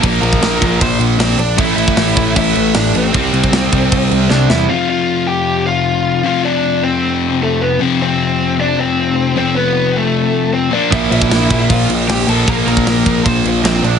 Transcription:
<<
  \new Staff \with { instrumentName = "Lead electric guitar" } { \time 4/4 \key f \lydian \tempo 4 = 154 <bes' bes''>8 <bes' bes''>4. <c'' c'''>8 r8 <c' c''>8 <d' d''>8 | <e' e''>8 <e' e''>4. <e' e''>4 <d' d''>8 <c' c''>8~ | <c' c''>2. <d' d''>8 <e' e''>8 | <f' f''>8 <f' f''>4 <g' g''>4 <f' f''>4. |
<f' f''>8 <d' d''>4 <c' c''>4. <a a'>8 <b b'>8 | <c' c''>8 <c' c''>4. <d' d''>8 <c' c''>4. | <c' c''>8 <b b'>4 <a a'>4. <c' c''>8 <d' d''>8 | <e' e''>8 <e' e''>4. <f' f''>8 r8 <g' g''>8 <a' a''>8 |
<bes' bes''>8 <bes' bes''>4. <c'' c'''>8 r8 <c' c''>8 <d' d''>8 | }
  \new Staff \with { instrumentName = "Overdriven electric guitar" } { \clef bass \time 4/4 \key f \lydian <bes, f bes>2.~ <bes, f bes>8 r8 | <a, e a>1 | <c g c'>1 | r1 |
r1 | r1 | r1 | <bes, f bes>1 |
<bes, f bes>1 | }
  \new Staff \with { instrumentName = "Distorted electric guitar" } { \clef bass \time 4/4 \key f \lydian <bes, f bes>2.~ <bes, f bes>8 r8 | <a, e a>1 | <c g c'>1 | <f, c f>1 |
<f, c f>1 | <f, c f>1 | <f, c f>2.~ <f, c f>8 <bes, f bes>8~ | <bes, f bes>2.~ <bes, f bes>8 <bes, f bes>8~ |
<bes, f bes>2.~ <bes, f bes>8 r8 | }
  \new Staff \with { instrumentName = "Picked electric bass" } { \clef bass \time 4/4 \key f \lydian bes,,8 bes,,8 bes,,8 bes,,8 bes,,8 bes,,8 bes,,8 bes,,8 | a,,8 a,,8 a,,8 a,,8 a,,8 a,,8 a,,8 a,,8 | c,8 c,8 c,8 c,8 c,8 c,8 c,8 e,8 | r1 |
r1 | r1 | r1 | bes,,8 bes,,8 bes,,8 bes,,8 bes,,8 bes,,8 bes,,8 bes,,8 |
bes,,8 bes,,8 bes,,8 bes,,8 bes,,8 bes,,8 bes,,8 bes,,8 | }
  \new DrumStaff \with { instrumentName = "Drums" } \drummode { \time 4/4 <cymc bd>8 cymc16 bd16 <cymc sn>8 <cymc bd>8 <cymc bd>8 cymc8 <cymc sn>8 cymc8 | <cymc bd>8 cymc16 bd16 <cymc sn>8 <cymc bd>8 <cymc bd>8 cymc8 <cymc sn>8 cymc8 | <cymc bd>8 cymc16 bd16 <cymc sn>8 <cymc bd>8 <cymc bd>8 cymc8 sn8 sn8 | r4 r4 r4 r4 |
r4 r4 r4 r4 | r4 r4 r4 r4 | r4 r4 r4 r4 | <cymc bd>8 cymc16 bd16 <cymc sn>8 <cymc bd>8 <cymc bd>8 cymc8 <cymc sn>8 cymc8 |
<cymc bd>8 cymc16 bd16 <cymc sn>8 <cymc bd>8 <cymc bd>8 cymc8 <cymc sn>8 cymc8 | }
>>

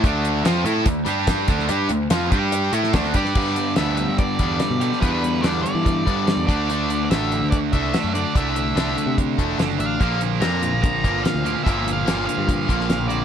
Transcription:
<<
  \new Staff \with { instrumentName = "Lead electric guitar" } { \time 4/4 \key g \major \tempo 4 = 145 r1 | r2. r8 d''8~ | d''4 e''4 d''2 | b'4 d''8 d''2 d''8~ |
\tuplet 3/2 { d''4~ d''16 d''16 } e''4 d''8 e''4 d''8 | e''2 r4. f''8~ | f''8 r8 bes''4 bes''4 f''4 | e''8. f''8. f''2 d''8 | }
  \new Staff \with { instrumentName = "Distorted electric guitar" } { \time 4/4 \key g \major <d a d'>4 <f c' f'>8 <a e' a'>8 <d a>8 <g d' g'>4 <d a d'>8 | <g d' g'>8 <d a>8 <f c' f'>8 <g d' g'>4 <a e' a'>8 <d a d'>8 <g d' g'>8 | <g b d'>8 <g b>8 <g b d'>8 <g b>8 <g b>8 <g b d'>8 <g b>8 <g b>8 | <g b d'>8 <g b>8 <g b d'>8 <g b>8 <g b>8 <g b d'>8 <g b>8 <d a d'>8 |
<d a d'>8 <d a>8 <d a d'>8 <d a>8 <d a>8 <d a d'>8 <d a>8 <d a>8 | <d a d'>8 <d a>8 <d a d'>8 <d a>8 <d a>8 <d a d'>8 <d a>8 <d a>8 | <bes, d bes>8 <bes, d>8 <bes, d bes>8 <bes, d>8 <bes, d>8 <bes, d bes>8 <bes, d>8 <bes, d>8 | <bes, d bes>8 <bes, d>8 <bes, d bes>8 <bes, d>8 <bes, d>8 <bes, d bes>8 <bes, d>8 <bes, d>8 | }
  \new Staff \with { instrumentName = "Distorted electric guitar" } { \time 4/4 \key g \major <d a d'>4 <f c' f'>8 <a e' a'>8 <d a>8 <g d' g'>4 <d a d'>8 | <g d' g'>8 <d a>8 <f c' f'>8 <g d' g'>4 <a e' a'>8 <d a d'>8 <g d' g'>8 | <g, d g>2.~ <g, d g>8 <g, d g>8 | <g, d g>2.~ <g, d g>8 <d a d'>8~ |
<d a d'>2. <d a d'>8 <d a d'>8~ | <d a d'>2. <d a d'>8 r8 | <bes, f bes>2.~ <bes, f bes>8 <bes, f bes>8 | <bes, f bes>2.~ <bes, f bes>8 <bes, f bes>8 | }
  \new Staff \with { instrumentName = "Picked electric bass" } { \clef bass \time 4/4 \key g \major d,4 f,8 a,8 d,8 g,4 d,8 | g,8 d,8 f,8 g,4 a,8 d,8 g,8 | g,4 d,8. g,8. e,8 r16 b,8 r16 | e,4 e,8 r16 e8. g,8. e,16 d,8~ |
d,4 a,,8. d,8. c,8 r16 fis,8 r16 | c,4 c,8 r16 c8. e,,8 fis,,8 a,,8 | bes,,4 f,8. bes,,8. g,,8 r16 d,8 r16 | g,,4 g,,8 r16 g,8. bes,,8. bes,,8. | }
  \new DrumStaff \with { instrumentName = "Drums" } \drummode { \time 4/4 <hh bd>8 hh8 <hh sn>8 hh8 <hh bd>8 hh8 <hh bd sn>8 <hh bd>16 sn16 | hh8 hh8 <hh sn>8 <hh bd>8 hh8 hh16 sn16 <hh bd sn>16 sn16 <hh bd>16 sn16 | <cymc bd>8 hh8 <hh sn>8 hh8 <hh bd>8 <hh bd>8 <hh sn>8 hh16 sn16 | <hh bd>8 hh8 <hh sn>8 hh8 <hh bd>8 <hh bd>8 <hh sn>8 <hh bd>8 |
hh8 hh8 <hh sn>8 hh8 <hh bd>8 <hh bd>8 <hh sn>8 hh8 | <hh bd>8 hh8 <hh sn>8 hh8 <hh bd>8 <hh bd>8 <hh sn>8 hh8 | <hh bd>8 hh8 <hh sn>8 hh8 <hh bd>8 <hh bd>8 <hh sn>8 hh8 | <hh bd>8 hh8 <hh sn>8 hh8 <hh bd>8 <hh bd>16 sn16 <hh sn>8 hh8 | }
>>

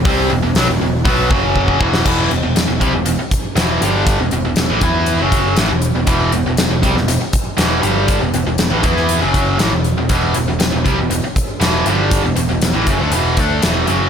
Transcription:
<<
  \new Staff \with { instrumentName = "Distorted electric guitar" } { \clef bass \time 4/4 \key e \minor \tempo 4 = 119 <c g c'>8 <e, b,>16 <e, b,>16 <b, fis>16 <e, b,>16 <e, b,>8 <b, fis b>8 <fis, cis fis>4 <e, b, e>8 | <e, b, e>8 <e, b,>16 <e, b,>16 <e, b,>16 <e, b,>16 <c g>16 <e, b,>16 <e, b,>16 r8. <e, b, e>8 <g, d g>8~ | <g, d g>16 <e, b,>16 <e, b,>16 <e, b,>16 <e, b,>16 <a, e>16 <e b e'>8. <fis, cis fis>8. <a, e>16 <e, b,>8 <e, b,>16 | <e, b, e>8 <e, b,>16 <e, b,>16 <e, b,>16 <e, b,>16 <c g>16 <e, b,>16 <e, b,>16 r8. <e, b, e>8 <g, d g>8~ |
<g, d g>16 <e, b,>16 <e, b,>16 <e, b,>16 <e, b,>16 <a, e>16 <e b e'>8. <fis, cis fis>8. <a, e>16 <e, b,>8 <e, b,>16 | <e, b, e>8 <e, b,>16 <e, b,>16 <e, b,>16 <e, b,>16 <c g>16 <e, b,>16 <e, b,>16 r8. <e, b, e>8 <g, d g>8~ | <g, d g>16 <e, b,>16 <e, b,>16 <e, b,>16 <e, b,>16 <a, e>16 <fis, cis>16 <d a>16 <e, b, e>8 <d a d'>8 <e, b, e>8 <fis, cis fis>8 | }
  \new Staff \with { instrumentName = "Picked electric bass" } { \clef bass \time 4/4 \key e \minor c,8 e,,16 e,,16 b,,16 e,,16 e,,8 b,,8 fis,,4 e,,8 | e,,8 e,,16 e,,16 e,,16 e,,16 c,16 e,,16 e,,16 r8. e,,8 g,,8~ | g,,16 e,,16 e,,16 e,,16 e,,16 a,,16 e,8. fis,,8. a,,16 e,,8 e,,16 | e,,8 e,,16 e,,16 e,,16 e,,16 c,16 e,,16 e,,16 r8. e,,8 g,,8~ |
g,,16 e,,16 e,,16 e,,16 e,,16 a,,16 e,8. fis,,8. a,,16 e,,8 e,,16 | e,,8 e,,16 e,,16 e,,16 e,,16 c,16 e,,16 e,,16 r8. e,,8 g,,8~ | g,,16 e,,16 e,,16 e,,16 e,,16 a,,16 fis,,16 d,16 e,,8 d,8 e,,8 fis,,8 | }
  \new DrumStaff \with { instrumentName = "Drums" } \drummode { \time 4/4 <hho bd>4 <hho sn>4 <hho bd>8 bd8 bd16 bd16 bd16 sn16 | <cymc bd>8 hh8 <hh sn>8 <hh bd>8 hh8 <hh bd>8 <hh sn>8 hh8 | <hh bd>8 hh8 <hh sn>8 <hh bd>8 hh8 <hh bd>8 <hh sn>8 hh8 | <hh bd>8 hh8 <hh sn>8 <hh bd>16 sn16 hh8 <hh bd>8 <hh sn>8 hh8 |
<hh bd>8 hh8 <hh sn>8 <hh bd>16 sn16 hh8 <hh bd>8 <hh sn>8 hh8 | <hh bd>8 hh8 <hh sn>8 <hh bd>8 hh8 <hh bd>8 <hh sn>8 hh8 | <hh bd>8 hh8 <hh sn>8 <hh bd>8 hh8 <hh bd>8 <hh sn>8 hh8 | }
>>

